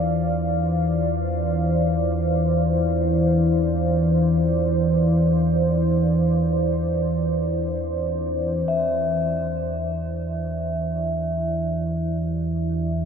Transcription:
Already playing: E2 E3 C5 D5 F5
8.68 E2 E3 E4 E5
10.52 G4

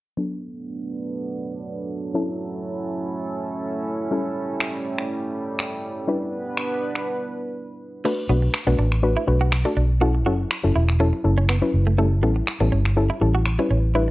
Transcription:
0.17 F#3 A3 B3 D4 A4
2.14 F#3 C#4 E4 A4
4.11 G3 C#4 E4 A4
4.61 finger snap
4.98 finger snap
5.59 finger snap
6.07 G3 B3 D4 E4 B4
6.57 finger snap
6.95 finger snap
8.05 A3 D4 F#4 B4, crash
8.29 B1 A3 B3 D4 F#4 B4
8.42 muted clean electric guitar stroke
8.54 finger snap, muted clean electric guitar stroke
8.67 B1 A3 B3 D4 F#4 B4
8.79 A1 D4
8.92 finger snap
9.03 A3 D4 F#4 B4
9.16 E4
9.27 B1 A3 D4 F#4 B4, muted clean electric guitar stroke
9.41 F#4
9.52 finger snap, muted clean electric guitar stroke
9.65 A3 D4 F#4 A4
9.77 B1 D4
10.01 F#3 C#4 E4 F#4 A4
10.15 muted clean electric guitar stroke
10.26 F#1 F#3 C#4 E4 F#4 A4
10.51 finger snap
10.63 F#1 F#3 C#4 E4 A4
10.75 E1 E4
10.89 finger snap
11.00 F#3 C#4 E4 A4
11.13 muted clean electric guitar stroke
11.24 F#1 F#3 C#4 E4 A4
11.38 C#4
11.49 B3, finger snap
11.62 F#3 C#4 E4 B4, muted clean electric guitar stroke
11.74 F#1
11.87 A3
11.98 G3 A3 C#4 E4 A4
12.23 A1 G3 B3 C#4 E4 A4
12.36 muted clean electric guitar stroke
12.47 finger snap, muted clean electric guitar stroke
12.60 A1 G3 B3 C#4 E4 A4
12.72 G1 C#4
12.85 finger snap
12.96 G3 C#4 E4 A4
13.10 E4
13.21 A1 G3 C#4 E4 A4, muted clean electric guitar stroke
13.35 F#4
13.46 finger snap, muted clean electric guitar stroke
13.59 G3 C#4 E4 B4
13.71 A1 C#4
13.95 G3 D4 E4 B4

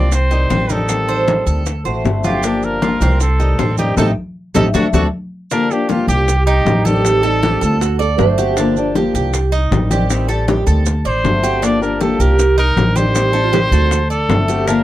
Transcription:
Already playing: C2 F3 A#3 C4 D4 G4 D5
0.12 C5, muted steel-string acoustic guitar stroke, high bongo, high conga, maracas
0.31 D#3 G3 C4 D#4 G4, high conga, maracas
0.50 A1 D#3 G3 C4 G4, high bongo, low bongo, high conga, maracas
0.69 D#3 G3 C4 D#4 G4 A4, high conga, maracas
0.89 D#3 G3 C4 G4, high bongo, high conga, maracas
1.08 C5, high bongo, high conga, maracas
1.27 D#3 G3 C4 G4, high bongo, high conga, maracas
1.46 D2 A4, high bongo, high conga, maracas
1.66 muted steel-string acoustic guitar stroke, high bongo, high conga, maracas
1.85 A1 A3 C4 F#4 C5, high bongo, high conga, maracas
2.04 G1 D3 A3 C4 F#4, high bongo, low bongo, high conga, maracas
2.24 A3 C4 F4 F#4 G4, high conga, maracas
2.43 D3 F3 A#3 D4 G4, high bongo, high conga, maracas
2.63 A#4, high conga, maracas
2.82 F3 A#3 D4 F4 G4, high bongo, high conga, maracas
3.01 C2 C4, high conga, maracas
3.20 A4, muted steel-string acoustic guitar stroke, high bongo, high conga, maracas
3.40 D#3 G3 C4 D#4 G4, high conga, maracas
3.59 A1 D#3 G3 C4 G4, high bongo, low bongo, high conga, maracas
3.78 D#3 G3 C4 D#4 G4, high conga, maracas
3.97 A1 A3 C4 D#4 G4 A4, low bongo, high conga, maracas
4.55 A1 A3 C4 D#4 G4 A4, low bongo, high conga, maracas
4.73 D2 A3 C4 D4 F#4 A4, low bongo, high conga, maracas
4.93 D2 A3 C4 D4 F#4 A4, low bongo, high conga, maracas
5.51 D3 F3 A#3 D4 G4 A#4, high bongo, high conga, maracas
5.71 F3 A#3 D4 G4, high conga, maracas
5.89 F3 A#3 D4 F4 G4, high bongo, high conga, maracas
6.08 C2 G4, high conga, maracas
6.28 muted steel-string acoustic guitar stroke, high bongo, high conga, maracas
6.46 D#4 G4, high conga, maracas
6.65 A1 D#3 G3 C4 G4, high bongo, low bongo, high conga, maracas
6.85 D#3 G3 C4 G4 A4, high conga, maracas
7.04 D#3 G3 C4 G4, high bongo, high conga, maracas
7.23 G3 C4 D#4 G4 A4, high bongo, high conga, maracas
7.43 D#3 G3 C4 G4, high bongo, high conga, maracas
7.61 D2 F4 A4, high bongo, maracas
7.81 F#4, muted steel-string acoustic guitar stroke, high bongo, high conga, maracas
7.99 A4 D5, high conga, maracas
8.18 G1 D3 A3 C4 F#4 C5, high bongo, low bongo, high conga, maracas
8.38 A3 C4 F#4 G4, high bongo, high conga, maracas
8.57 D3 F3 A#3 D4 G4, high bongo, high conga, maracas
8.76 F3 A#3 D4 G4, high conga, maracas
8.95 F3 A#3 D4 G4, high bongo, high conga, maracas
9.14 C2 G4, high conga, maracas
9.33 muted steel-string acoustic guitar stroke, high bongo, high conga, maracas
9.52 D#4, high conga, maracas
9.71 A1 D#3 G3 C4 G4, high bongo, low bongo, high conga, maracas
9.90 D#3 G3 C4 G4, high conga, maracas
10.10 D#3 G3 C4 G4, high bongo, high conga, maracas
10.29 G3 C4 G4 A4, high bongo, high conga, maracas
10.48 D#3 G3 C4 G4, high bongo, high conga, maracas
10.67 D2 A4, high bongo, maracas
10.86 muted steel-string acoustic guitar stroke, high bongo, high conga, maracas
11.05 A1 C5 D5, high conga, maracas
11.24 G1 D3 A3 C4 F#4, high bongo, low bongo, high conga, maracas
11.43 A3 C4 F#4 G4, high bongo, high conga, maracas
11.62 D3 F3 A#3 D4 G4 D5, high bongo, high conga, maracas
11.81 F3 A#3 D4 G4 A#4, high conga, maracas
12.01 F3 A#3 D4 G4 A4, high bongo, high conga, maracas
12.19 C2 G4 A#4, high conga, maracas
12.39 muted steel-string acoustic guitar stroke, high bongo, high conga, maracas
12.58 D#4 A#4, high conga, maracas
12.76 A1 D#3 G3 C4 G4, high bongo, low bongo, high conga, maracas
12.96 D#3 G3 C4 G4 C5, high conga, maracas
13.15 D#3 G3 C4 G4, high bongo, high conga, maracas
13.33 G3 C4 D#4 G4 A4, high bongo, high conga, maracas
13.44 F4
13.53 D#3 G3 C4 G4, high bongo, high conga, maracas
13.71 D2 F#4 A4, high bongo, maracas
13.91 muted steel-string acoustic guitar stroke, high bongo, high conga, maracas
14.10 A4 D5, high conga, maracas
14.29 G1 D3 A3 C4 F#4, high bongo, low bongo, high conga, maracas
14.48 A3 C4 F#4 G4, high bongo, high conga, maracas
14.67 D3 F3 A#3 D4 G4 A#4, high bongo, high conga, maracas

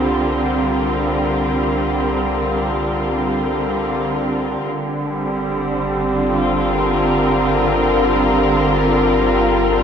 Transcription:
Already playing: C2 D3 G3 C4 F4 A#4
4.63 G1 D3
5.04 G3
5.17 C4
6.18 F4
6.65 A#4

